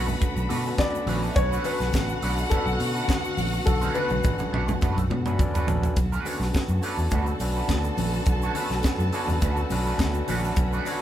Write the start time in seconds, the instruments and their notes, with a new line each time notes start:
Already playing: fingered electric bass B1, string section D3 A3 B3 F#4, clean electric guitar A3, tine electric piano C#4 D4 F#4 A4 B4, violin section B4 B5, grand piano F#5
0.07 muted clean electric guitar stroke, low conga, shaker
0.21 muted clean electric guitar stroke, kick, closed hi-hat, muted conga, shaker
0.36 fingered electric bass B1, muted clean electric guitar stroke, shaker
0.49 fingered electric bass B2, clean electric guitar A3 D4 F#4 B4, open hi-hat, muted conga, low conga
0.64 tine electric piano C#4 D4 F#4 A4 B4, muted clean electric guitar stroke, shaker
0.77 tine electric piano C#4 D4 F#4 A4 B4, grand piano D5, muted clean electric guitar stroke, kick, snare, closed hi-hat, high conga, shaker
0.94 muted clean electric guitar stroke, shaker
1.06 fingered electric bass A#1, clean electric guitar A3 D4 F#4 B4, violin section B3 B4, tine electric piano C#4 D4 F#4 A4 B4, open hi-hat, high conga, shaker
1.16 violin section C#4 C#5
1.23 clean electric guitar A3 D4 F#4 B4, violin section D4 D5, shaker
1.30 violin section E4 E5
1.36 fingered electric bass B1, violin section F#4 F#5, grand piano C#5, muted clean electric guitar stroke, kick, closed hi-hat, muted conga, shaker
1.51 clean electric guitar A3 D4 F#4 B4, shaker
1.64 clean electric guitar A3 D4 F#4 C#5, tine electric piano C#4 D4 F#4 A4 B4, grand piano B4, open hi-hat, muted conga, shaker
1.80 fingered electric bass B1, muted clean electric guitar stroke, snare, shaker
1.93 fingered electric bass A1, kick, snare, closed hi-hat, high conga, shaker
2.09 muted clean electric guitar stroke, shaker
2.22 fingered electric bass B1, clean electric guitar A3 D4 F#4 B4, tine electric piano C#4 D4 F#4 A4 B4, open hi-hat
2.38 muted clean electric guitar stroke, shaker
2.50 clean electric guitar A3 D4 F#4 B4, tine electric piano C#4 D4 F#4 A4 B4, grand piano A4, kick, closed hi-hat, muted conga, shaker
2.66 fingered electric bass B1, muted clean electric guitar stroke, shaker
2.80 fingered electric bass B2, muted clean electric guitar stroke, open hi-hat, muted conga
2.95 clean electric guitar A3 D4 F#4 B4, shaker
3.08 muted clean electric guitar stroke, kick, snare, closed hi-hat, high conga, shaker
3.25 muted clean electric guitar stroke, shaker
3.37 fingered electric bass A#1, open hi-hat, high conga, shaker
3.53 muted clean electric guitar stroke, shaker
3.66 fingered electric bass B1, grand piano A4, muted clean electric guitar stroke, kick, high tom, muted conga, shaker
3.81 clean electric guitar A3 D4 F#4 C#5, tine electric piano C#4 D4 F#4 A4 B4, high tom, shaker
3.94 clean electric guitar A3 D4 F#4 B4, grand piano B4, high tom, muted conga, shaker
4.09 fingered electric bass B1, muted clean electric guitar stroke, high tom, shaker
4.24 fingered electric bass A1, tine electric piano C#4 D4 F#4 A4 B4, kick, mid tom, high conga, shaker
4.39 muted clean electric guitar stroke, mid tom, shaker
4.52 fingered electric bass B1, clean electric guitar A3 D4 F#4 C#5, mid tom
4.68 muted clean electric guitar stroke, mid tom, low conga, shaker
4.81 clean electric guitar A3 D4 F#4 B4, kick, mid tom, muted conga, shaker
4.96 fingered electric bass B1, muted clean electric guitar stroke, mid tom, shaker
5.09 fingered electric bass B2, muted clean electric guitar stroke, mid tom, muted conga, low conga
5.26 clean electric guitar A3 D4 F#4 B4, tine electric piano C#4 D4 F#4 A4 B4, mid tom, shaker
5.38 tine electric piano C#4 D4 F#4 A4 D5, muted clean electric guitar stroke, kick, floor tom, high conga, shaker
5.54 clean electric guitar A3 D4 F#4 B4, floor tom, shaker
5.67 fingered electric bass A#1, tine electric piano C#4 D4 F#4 A4 B4, muted clean electric guitar stroke, floor tom, high conga, shaker
5.83 muted clean electric guitar stroke, floor tom, shaker
5.96 fingered electric bass B1, string section D3 A3 B3 F#4, violin section A4 A5, muted clean electric guitar stroke, kick, closed hi-hat, muted conga, shaker
6.12 clean electric guitar A3 D4 F#4 B4, shaker
6.25 clean electric guitar A3 D4 F#4 C#5, tine electric piano C#4 D4 F#4 A4 B4, open hi-hat, muted conga, shaker
6.40 fingered electric bass B1, muted clean electric guitar stroke, snare, shaker
6.53 kick, snare, closed hi-hat, high conga, shaker
6.68 fingered electric bass F#2, muted clean electric guitar stroke, shaker
6.82 clean electric guitar A3 D4 F#4 B4, tine electric piano D4 F#4 A4 C#5 D5, open hi-hat, shaker
6.97 fingered electric bass E2, muted clean electric guitar stroke, shaker
7.10 fingered electric bass D2, clean electric guitar A3 D4 F#4 B4, kick, closed hi-hat, muted conga, low conga, shaker
7.26 muted clean electric guitar stroke, shaker
7.40 fingered electric bass B1, tine electric piano C#4 D4 F#4 A4 B4, muted clean electric guitar stroke, open hi-hat, shaker
7.56 clean electric guitar A3 D4 F#4 B4, shaker
7.68 fingered electric bass D2, kick, snare, closed hi-hat, high conga, shaker
7.84 muted clean electric guitar stroke, shaker
7.97 fingered electric bass A#1, tine electric piano C#4 D4 F#4 A4 B4, open hi-hat, high conga, shaker
8.13 muted clean electric guitar stroke, shaker
8.26 fingered electric bass B1, muted clean electric guitar stroke, kick, closed hi-hat, muted conga, shaker
8.42 clean electric guitar A3 D4 F#4 C#5, shaker
8.55 clean electric guitar A3 D4 F#4 B4, tine electric piano C#4 D4 F#4 A4 B4, open hi-hat, muted conga, shaker
8.70 fingered electric bass B1, muted clean electric guitar stroke, snare, shaker
8.83 kick, snare, closed hi-hat, high conga, shaker
8.98 fingered electric bass F#2, muted clean electric guitar stroke, shaker
9.12 clean electric guitar A3 D4 F#4 C#5, tine electric piano C#4 D4 F#4 A4 B4, open hi-hat, shaker
9.27 fingered electric bass E2, muted clean electric guitar stroke, low conga, shaker
9.41 fingered electric bass D2, clean electric guitar A3 D4 F#4 B4, tine electric piano D5, kick, closed hi-hat, muted conga, shaker
9.57 muted clean electric guitar stroke, shaker
9.70 fingered electric bass B1, tine electric piano C#4 D4 F#4 A4 B4, muted clean electric guitar stroke, open hi-hat, low conga, shaker
9.86 clean electric guitar A3 D4 F#4 B4, shaker
9.98 fingered electric bass D2, tine electric piano E5, muted clean electric guitar stroke, kick, snare, closed hi-hat, high conga, shaker
10.14 muted clean electric guitar stroke, shaker
10.28 fingered electric bass A#1, clean electric guitar A3 D4 F#4 B4, tine electric piano C#4 D4 F#4 A4 B4 F#5, open hi-hat, high conga, shaker
10.44 clean electric guitar A3 D4 F#4 B4, shaker
10.56 fingered electric bass B1, violin section B4 B5, muted clean electric guitar stroke, kick, closed hi-hat, muted conga, shaker
10.73 clean electric guitar A3 D4 F#4 B4, shaker
10.85 clean electric guitar A3 D4 F#4 C#5, tine electric piano C#4 D4 F#4 A4 B4, open hi-hat, muted conga, shaker